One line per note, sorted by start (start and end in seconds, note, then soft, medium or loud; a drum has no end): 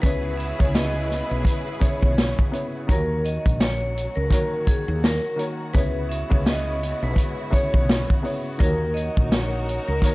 0.00 0.51 C#2 loud
0.00 0.54 C#3 loud
0.00 2.86 C#3 medium
0.00 2.86 G#3 medium
0.00 0.55 B3 medium
0.00 2.86 B3 medium
0.00 2.85 E4 loud
0.00 2.86 E4 medium
0.00 2.85 F#4 medium
0.00 2.85 G#4 medium
0.00 0.35 B4 loud
0.00 2.85 B4 loud
0.00 kick loud
0.00 closed hi-hat loud
0.04 0.55 E4 medium
0.04 0.56 C#5 loud
0.37 0.70 E5 medium
0.37 closed hi-hat medium
0.58 1.21 C#2 medium
0.58 1.73 C#3 medium
0.58 1.73 B3 medium
0.58 1.74 E4 medium
0.58 1.74 C#5 loud
0.58 kick loud
0.58 closed hi-hat medium
0.75 1.28 D#5 medium
0.75 snare loud
0.75 closed hi-hat loud
1.11 snare soft
1.11 closed hi-hat medium
1.30 1.44 B1 loud
1.30 1.78 B4 medium
1.45 kick medium
1.45 closed hi-hat loud
1.79 2.47 C#3 medium
1.79 2.47 B3 medium
1.79 2.48 E4 medium
1.79 2.48 C#5 loud
1.79 2.35 C#5 medium
1.79 kick loud
1.79 closed hi-hat medium
2.02 2.33 B1 loud
2.02 kick loud
2.18 snare loud
2.18 closed hi-hat medium
2.39 kick medium
2.51 2.85 C#3 medium
2.51 2.86 B3 medium
2.51 2.86 E4 medium
2.51 2.87 C#5 medium
2.51 closed hi-hat medium
2.87 3.37 D#2 loud
2.87 4.21 D#3 medium
2.87 5.72 F#3 medium
2.87 4.21 A#3 medium
2.87 5.72 C#4 medium
2.87 4.22 F#4 medium
2.87 10.15 F#4 medium
2.87 4.22 C#5 loud
2.87 kick loud
2.87 closed hi-hat loud
2.91 3.22 A#4 loud
3.25 3.57 D#5 medium
3.25 closed hi-hat medium
3.46 4.06 A#1 medium
3.46 kick loud
3.46 closed hi-hat medium
3.60 4.13 C#5 medium
3.60 snare loud
3.60 closed hi-hat loud
3.98 closed hi-hat medium
4.15 4.29 C#2 medium
4.15 4.64 A#4 medium
4.30 5.31 D#3 loud
4.30 5.31 A#3 medium
4.30 5.32 F#4 medium
4.30 5.32 C#5 loud
4.30 kick medium
4.30 closed hi-hat loud
4.67 4.99 G#4 medium
4.67 kick loud
4.67 closed hi-hat medium
4.88 5.18 D#2 loud
5.04 5.36 A#4 medium
5.04 snare loud
5.04 closed hi-hat medium
5.36 5.71 D#3 medium
5.36 5.71 A#3 medium
5.36 5.72 F#4 medium
5.36 5.72 C#5 medium
5.36 closed hi-hat medium
5.74 6.23 C#2 loud
5.74 6.26 C#3 medium
5.74 8.57 C#3 medium
5.74 8.57 G#3 medium
5.74 8.57 B3 medium
5.74 6.26 B3 medium
5.74 8.57 E4 medium
5.74 6.27 E4 medium
5.74 6.06 B4 loud
5.74 6.27 C#5 loud
5.74 kick loud
5.74 closed hi-hat loud
6.09 6.42 E5 medium
6.09 closed hi-hat medium
6.29 6.92 C#2 medium
6.29 7.44 C#3 medium
6.29 7.44 B3 loud
6.29 7.45 E4 medium
6.29 7.45 C#5 loud
6.29 kick loud
6.46 6.99 D#5 medium
6.46 snare loud
6.46 closed hi-hat loud
6.83 closed hi-hat medium
7.03 7.15 B1 loud
7.03 7.51 B4 medium
7.16 kick medium
7.16 closed hi-hat loud
7.50 8.18 C#3 medium
7.50 8.19 B3 medium
7.50 8.19 E4 medium
7.50 8.06 C#5 medium
7.50 8.20 C#5 loud
7.50 kick loud
7.50 closed hi-hat medium
7.74 8.04 B1 loud
7.74 kick loud
7.89 snare loud
7.89 closed hi-hat medium
8.10 kick loud
8.22 8.57 C#3 medium
8.22 8.57 B3 medium
8.22 8.58 E4 medium
8.22 8.58 C#5 medium
8.22 open hi-hat medium
8.58 9.08 D#2 loud
8.58 9.92 D#3 medium
8.58 10.15 F#3 medium
8.58 9.93 A#3 medium
8.58 10.15 C#4 medium
8.58 10.15 D#4 medium
8.58 10.15 F#4 medium
8.58 9.93 F#4 medium
8.58 8.92 A#4 loud
8.58 10.15 A#4 loud
8.58 9.94 C#5 loud
8.58 kick loud
8.58 closed hi-hat loud
8.94 9.27 D#5 medium
8.94 closed hi-hat medium
9.17 9.78 A#1 medium
9.17 kick loud
9.32 9.85 C#5 medium
9.32 snare loud
9.32 closed hi-hat loud
9.69 closed hi-hat medium
9.88 10.01 C#2 medium
9.88 10.15 A#4 medium
10.02 10.15 D#3 loud
10.02 10.15 A#3 medium
10.02 10.15 F#4 medium
10.02 10.15 C#5 loud
10.02 kick medium
10.02 closed hi-hat loud